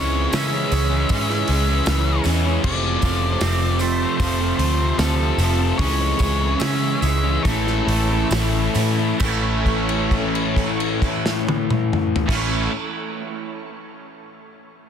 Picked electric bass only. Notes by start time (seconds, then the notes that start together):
Already playing: C#2
0.33 C#3
0.72 C#2
1.10 G#2
1.49 C#2
1.87 C#2
2.25 E2
2.64 F1
3.03 F1
3.41 F1
4.20 F1
4.59 D2
4.98 D2
5.38 F1
5.79 C#2
6.20 C#2
6.61 C#3
7.02 C#2
7.45 A1
7.87 A1
8.31 A1
8.75 A2
9.21 A1
12.29 A1